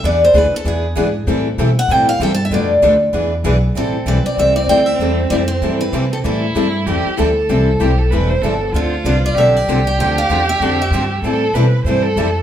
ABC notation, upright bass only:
X:1
M:4/4
L:1/8
Q:"Swing" 1/4=193
K:Am
V:1 name="Upright bass" clef=bass
E,,2 D,, z E,,2 ^G,,2 | A,,2 B,,2 A,,2 G,,2 | F,,2 D,,2 E,,2 B,,,2 | A,,,2 B,,, z C,,2 D,,2 |
E,,2 F,,2 G,,2 C,2 | A,,2 G,,2 E,, z D,,2 | C,,2 B,,,2 E,,,2 G,,,2 | D,,2 C,,2 B,,,2 C,,2 |
D,,2 E,,2 F,,2 G,,2 | A,,2 B,,2 G,,2 F,,2 |]